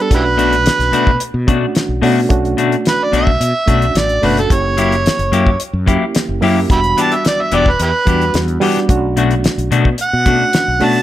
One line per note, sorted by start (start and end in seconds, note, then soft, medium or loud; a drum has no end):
0.00 0.10 D4 medium
0.00 0.10 G4 medium
0.00 0.12 A4 medium
0.10 0.68 B1 medium
0.10 1.14 A3 medium
0.10 1.15 C#4 medium
0.10 1.15 D4 medium
0.10 1.15 F#4 medium
0.10 kick loud
0.10 closed hi-hat medium
0.15 0.24 E4 medium
0.15 0.22 G4 medium
0.15 1.20 B4 loud
0.37 0.54 B2 medium
0.37 0.55 A3 medium
0.37 0.55 D4 medium
0.37 0.55 F#4 loud
0.37 closed hi-hat medium
0.53 closed hi-hat soft
0.66 snare loud
0.66 closed hi-hat medium
0.79 0.91 B1 medium
0.79 snare soft
0.79 closed hi-hat soft
0.92 1.09 B2 medium
0.92 1.16 B2 medium
0.92 1.10 A3 loud
0.92 1.10 D4 loud
0.92 1.10 F#4 loud
0.92 closed hi-hat medium
1.07 kick medium
1.20 closed hi-hat medium
1.34 1.57 B2 medium
1.47 1.64 B2 medium
1.47 1.99 A3 medium
1.47 1.65 A3 medium
1.47 2.00 C#4 medium
1.47 2.00 D4 medium
1.47 1.65 D4 medium
1.47 1.65 F#4 medium
1.47 2.00 F#4 medium
1.47 kick medium
1.47 closed hi-hat medium
1.75 snare loud
1.75 closed hi-hat medium
1.89 2.00 B1 medium
2.02 2.19 B2 medium
2.02 2.25 B2 medium
2.02 2.19 A3 medium
2.02 2.28 A3 medium
2.02 2.29 C#4 medium
2.02 2.20 D4 medium
2.02 2.29 D4 medium
2.02 2.20 F#4 loud
2.02 2.30 F#4 medium
2.02 open hi-hat medium
2.29 2.53 B1 medium
2.29 3.34 A3 medium
2.29 3.34 C#4 medium
2.29 3.34 D4 medium
2.29 3.34 F#4 medium
2.29 kick loud
2.29 closed hi-hat medium
2.45 closed hi-hat soft
2.57 2.74 B2 medium
2.57 2.75 A3 medium
2.57 2.75 D4 loud
2.57 2.75 F#4 medium
2.57 closed hi-hat medium
2.72 closed hi-hat soft
2.85 3.05 B4 medium
2.85 snare medium
2.85 closed hi-hat medium
3.03 3.14 D5 medium
3.12 3.36 B1 medium
3.12 3.29 B2 medium
3.12 3.30 A3 medium
3.12 3.30 D4 medium
3.12 3.30 F#4 medium
3.12 closed hi-hat medium
3.17 4.00 E5 loud
3.27 kick medium
3.40 3.52 B2 medium
3.40 closed hi-hat medium
3.66 3.93 B1 medium
3.66 3.84 B2 medium
3.66 4.19 A3 medium
3.66 3.85 A3 medium
3.66 4.19 C#4 medium
3.66 4.20 D4 medium
3.66 3.85 D4 medium
3.66 4.20 F#4 medium
3.66 3.85 F#4 medium
3.66 kick medium
3.66 closed hi-hat medium
3.82 closed hi-hat soft
3.95 4.20 A1 medium
3.95 4.27 D5 medium
3.95 snare loud
3.95 closed hi-hat medium
4.09 closed hi-hat soft
4.21 4.48 F#1 medium
4.21 4.39 B2 medium
4.21 4.48 A3 medium
4.21 4.40 A3 medium
4.21 4.49 C#4 medium
4.21 4.49 D4 medium
4.21 4.40 D4 medium
4.21 4.49 F#4 medium
4.21 4.40 F#4 medium
4.21 open hi-hat medium
4.26 4.37 B4 medium
4.37 4.54 A4 medium
4.37 closed hi-hat soft
4.49 5.07 F#1 medium
4.49 5.53 A#3 medium
4.49 5.54 C#4 medium
4.49 5.54 E4 medium
4.49 5.54 G4 medium
4.49 kick loud
4.49 closed hi-hat medium
4.53 5.58 C#5 loud
4.77 4.94 F#3 medium
4.77 4.94 A#3 medium
4.77 4.95 E4 medium
4.77 4.95 G4 medium
4.77 closed hi-hat medium
4.92 closed hi-hat soft
5.06 snare loud
5.06 closed hi-hat medium
5.19 5.30 F#1 medium
5.19 closed hi-hat soft
5.32 5.55 F#2 medium
5.32 5.49 F#3 medium
5.32 5.49 A#3 medium
5.32 5.49 E4 medium
5.32 5.50 G4 loud
5.32 closed hi-hat medium
5.47 kick medium
5.60 closed hi-hat medium
5.73 5.96 F#2 medium
5.86 6.04 F#3 medium
5.86 6.39 A#3 medium
5.86 6.04 A#3 medium
5.86 6.39 C#4 medium
5.86 6.39 E4 medium
5.86 6.04 E4 medium
5.86 6.04 G4 medium
5.86 6.40 G4 medium
5.86 kick medium
5.86 closed hi-hat medium
6.15 snare loud
6.15 closed hi-hat medium
6.29 6.40 F#1 medium
6.41 6.65 F#2 medium
6.41 6.59 F#3 medium
6.41 6.68 A#3 medium
6.41 6.59 A#3 medium
6.41 6.68 C#4 medium
6.41 6.68 E4 medium
6.41 6.59 E4 loud
6.41 6.69 G4 medium
6.41 6.60 G4 loud
6.41 open hi-hat medium
6.68 6.93 E1 medium
6.68 7.73 G3 medium
6.68 7.73 B3 medium
6.68 7.74 D4 medium
6.68 7.74 F#4 medium
6.68 6.80 E5 medium
6.68 6.79 G5 medium
6.68 6.98 B5 medium
6.68 kick loud
6.68 closed hi-hat medium
6.84 closed hi-hat soft
6.97 7.14 E3 medium
6.97 7.14 B3 medium
6.97 7.14 D4 medium
6.97 7.15 G4 medium
6.97 closed hi-hat medium
7.01 7.16 A5 medium
7.12 7.25 E5 medium
7.12 closed hi-hat soft
7.25 7.43 D5 medium
7.25 snare loud
7.25 closed hi-hat medium
7.42 7.57 E5 medium
7.52 7.75 E1 medium
7.52 7.68 E3 medium
7.52 7.69 B3 medium
7.52 7.69 D4 medium
7.52 7.69 G4 medium
7.52 closed hi-hat medium
7.56 7.72 D5 loud
7.66 kick medium
7.70 7.81 B4 medium
7.80 7.91 E2 medium
7.80 7.89 E4 medium
7.80 7.89 G4 medium
7.80 8.34 B4 loud
7.80 closed hi-hat medium
8.05 8.30 E2 medium
8.05 8.23 E3 medium
8.05 8.58 G3 medium
8.05 8.58 B3 medium
8.05 8.24 B3 medium
8.05 8.58 D4 medium
8.05 8.24 D4 medium
8.05 8.59 F#4 medium
8.05 8.24 G4 medium
8.05 kick medium
8.05 closed hi-hat medium
8.21 closed hi-hat soft
8.34 8.57 E2 medium
8.34 snare loud
8.34 closed hi-hat medium
8.48 closed hi-hat soft
8.60 8.78 E3 medium
8.60 8.87 G3 medium
8.60 8.87 B3 medium
8.60 8.78 B3 medium
8.60 8.88 D4 medium
8.60 8.79 D4 medium
8.60 8.88 F#4 medium
8.60 8.79 G4 medium
8.60 open hi-hat medium
8.76 snare soft
8.76 closed hi-hat soft
8.88 9.46 B1 loud
8.88 9.93 A3 medium
8.88 9.93 C#4 medium
8.88 9.93 D4 medium
8.88 9.93 F#4 medium
8.88 kick loud
8.88 closed hi-hat medium
9.17 9.33 B2 medium
9.17 9.34 A3 loud
9.17 9.34 D4 medium
9.17 9.34 F#4 loud
9.17 closed hi-hat medium
9.31 closed hi-hat soft
9.44 snare loud
9.44 closed hi-hat medium
9.58 9.69 B1 medium
9.58 closed hi-hat soft
9.71 9.88 B2 medium
9.71 9.94 B2 medium
9.71 9.88 A3 medium
9.71 9.88 D4 loud
9.71 9.89 F#4 loud
9.71 closed hi-hat medium
9.85 kick medium
9.98 closed hi-hat medium
10.03 10.85 F#5 loud
10.13 10.36 B2 medium
10.25 10.43 B2 medium
10.25 10.78 A3 medium
10.25 10.43 A3 medium
10.25 10.78 C#4 medium
10.25 10.78 D4 medium
10.25 10.43 D4 medium
10.25 10.78 F#4 medium
10.25 10.44 F#4 medium
10.25 kick medium
10.25 closed hi-hat medium
10.53 snare loud
10.53 closed hi-hat medium
10.68 10.79 B1 medium
10.79 10.98 B2 medium
10.79 11.03 B2 medium
10.79 11.03 A3 medium
10.79 10.98 A3 medium
10.79 11.03 C#4 medium
10.79 11.03 D4 medium
10.79 10.98 D4 medium
10.79 11.03 F#4 medium
10.79 10.98 F#4 medium
10.79 open hi-hat medium
10.84 11.03 A5 medium